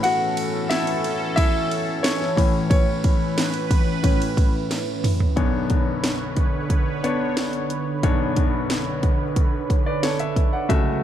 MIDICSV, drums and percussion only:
0, 0, Header, 1, 2, 480
1, 0, Start_track
1, 0, Tempo, 666149
1, 30, Time_signature, 4, 2, 24, 8
1, 7950, End_track
2, 0, Start_track
2, 0, Title_t, "Drums"
2, 27, Note_on_c, 9, 51, 78
2, 99, Note_off_c, 9, 51, 0
2, 267, Note_on_c, 9, 51, 67
2, 339, Note_off_c, 9, 51, 0
2, 509, Note_on_c, 9, 38, 120
2, 510, Note_on_c, 9, 51, 74
2, 581, Note_off_c, 9, 38, 0
2, 582, Note_off_c, 9, 51, 0
2, 628, Note_on_c, 9, 51, 43
2, 701, Note_off_c, 9, 51, 0
2, 752, Note_on_c, 9, 51, 55
2, 824, Note_off_c, 9, 51, 0
2, 990, Note_on_c, 9, 36, 97
2, 991, Note_on_c, 9, 51, 84
2, 1062, Note_off_c, 9, 36, 0
2, 1063, Note_off_c, 9, 51, 0
2, 1236, Note_on_c, 9, 51, 51
2, 1308, Note_off_c, 9, 51, 0
2, 1472, Note_on_c, 9, 38, 107
2, 1473, Note_on_c, 9, 51, 65
2, 1544, Note_off_c, 9, 38, 0
2, 1545, Note_off_c, 9, 51, 0
2, 1594, Note_on_c, 9, 38, 35
2, 1666, Note_off_c, 9, 38, 0
2, 1711, Note_on_c, 9, 36, 93
2, 1717, Note_on_c, 9, 46, 65
2, 1717, Note_on_c, 9, 51, 57
2, 1783, Note_off_c, 9, 36, 0
2, 1789, Note_off_c, 9, 46, 0
2, 1789, Note_off_c, 9, 51, 0
2, 1950, Note_on_c, 9, 36, 127
2, 1951, Note_on_c, 9, 51, 76
2, 2023, Note_off_c, 9, 36, 0
2, 2023, Note_off_c, 9, 51, 0
2, 2191, Note_on_c, 9, 51, 65
2, 2193, Note_on_c, 9, 36, 82
2, 2263, Note_off_c, 9, 51, 0
2, 2265, Note_off_c, 9, 36, 0
2, 2434, Note_on_c, 9, 38, 108
2, 2435, Note_on_c, 9, 51, 75
2, 2506, Note_off_c, 9, 38, 0
2, 2507, Note_off_c, 9, 51, 0
2, 2548, Note_on_c, 9, 51, 44
2, 2620, Note_off_c, 9, 51, 0
2, 2671, Note_on_c, 9, 36, 83
2, 2672, Note_on_c, 9, 51, 59
2, 2743, Note_off_c, 9, 36, 0
2, 2744, Note_off_c, 9, 51, 0
2, 2909, Note_on_c, 9, 36, 81
2, 2910, Note_on_c, 9, 51, 84
2, 2981, Note_off_c, 9, 36, 0
2, 2982, Note_off_c, 9, 51, 0
2, 3038, Note_on_c, 9, 51, 44
2, 3111, Note_off_c, 9, 51, 0
2, 3151, Note_on_c, 9, 36, 85
2, 3155, Note_on_c, 9, 51, 57
2, 3223, Note_off_c, 9, 36, 0
2, 3227, Note_off_c, 9, 51, 0
2, 3392, Note_on_c, 9, 38, 65
2, 3394, Note_on_c, 9, 51, 65
2, 3464, Note_off_c, 9, 38, 0
2, 3466, Note_off_c, 9, 51, 0
2, 3632, Note_on_c, 9, 45, 99
2, 3634, Note_on_c, 9, 46, 73
2, 3634, Note_on_c, 9, 51, 56
2, 3704, Note_off_c, 9, 45, 0
2, 3706, Note_off_c, 9, 46, 0
2, 3706, Note_off_c, 9, 51, 0
2, 3750, Note_on_c, 9, 43, 106
2, 3822, Note_off_c, 9, 43, 0
2, 3868, Note_on_c, 9, 42, 73
2, 3869, Note_on_c, 9, 36, 109
2, 3940, Note_off_c, 9, 42, 0
2, 3941, Note_off_c, 9, 36, 0
2, 4105, Note_on_c, 9, 42, 69
2, 4110, Note_on_c, 9, 36, 73
2, 4177, Note_off_c, 9, 42, 0
2, 4182, Note_off_c, 9, 36, 0
2, 4350, Note_on_c, 9, 38, 106
2, 4351, Note_on_c, 9, 42, 85
2, 4422, Note_off_c, 9, 38, 0
2, 4423, Note_off_c, 9, 42, 0
2, 4586, Note_on_c, 9, 42, 49
2, 4588, Note_on_c, 9, 36, 70
2, 4658, Note_off_c, 9, 42, 0
2, 4660, Note_off_c, 9, 36, 0
2, 4828, Note_on_c, 9, 36, 75
2, 4828, Note_on_c, 9, 42, 88
2, 4900, Note_off_c, 9, 36, 0
2, 4900, Note_off_c, 9, 42, 0
2, 5073, Note_on_c, 9, 42, 68
2, 5145, Note_off_c, 9, 42, 0
2, 5310, Note_on_c, 9, 38, 102
2, 5311, Note_on_c, 9, 42, 66
2, 5382, Note_off_c, 9, 38, 0
2, 5383, Note_off_c, 9, 42, 0
2, 5426, Note_on_c, 9, 42, 45
2, 5498, Note_off_c, 9, 42, 0
2, 5549, Note_on_c, 9, 42, 62
2, 5621, Note_off_c, 9, 42, 0
2, 5789, Note_on_c, 9, 36, 92
2, 5789, Note_on_c, 9, 42, 78
2, 5861, Note_off_c, 9, 36, 0
2, 5861, Note_off_c, 9, 42, 0
2, 6027, Note_on_c, 9, 42, 67
2, 6031, Note_on_c, 9, 36, 76
2, 6100, Note_off_c, 9, 42, 0
2, 6103, Note_off_c, 9, 36, 0
2, 6269, Note_on_c, 9, 38, 103
2, 6270, Note_on_c, 9, 42, 87
2, 6341, Note_off_c, 9, 38, 0
2, 6342, Note_off_c, 9, 42, 0
2, 6507, Note_on_c, 9, 42, 51
2, 6508, Note_on_c, 9, 36, 76
2, 6579, Note_off_c, 9, 42, 0
2, 6580, Note_off_c, 9, 36, 0
2, 6747, Note_on_c, 9, 36, 83
2, 6747, Note_on_c, 9, 42, 92
2, 6819, Note_off_c, 9, 36, 0
2, 6819, Note_off_c, 9, 42, 0
2, 6989, Note_on_c, 9, 36, 72
2, 6991, Note_on_c, 9, 42, 61
2, 7061, Note_off_c, 9, 36, 0
2, 7063, Note_off_c, 9, 42, 0
2, 7229, Note_on_c, 9, 38, 94
2, 7230, Note_on_c, 9, 42, 73
2, 7301, Note_off_c, 9, 38, 0
2, 7302, Note_off_c, 9, 42, 0
2, 7346, Note_on_c, 9, 42, 53
2, 7418, Note_off_c, 9, 42, 0
2, 7468, Note_on_c, 9, 36, 80
2, 7469, Note_on_c, 9, 42, 55
2, 7540, Note_off_c, 9, 36, 0
2, 7541, Note_off_c, 9, 42, 0
2, 7709, Note_on_c, 9, 36, 105
2, 7709, Note_on_c, 9, 42, 81
2, 7781, Note_off_c, 9, 36, 0
2, 7781, Note_off_c, 9, 42, 0
2, 7950, End_track
0, 0, End_of_file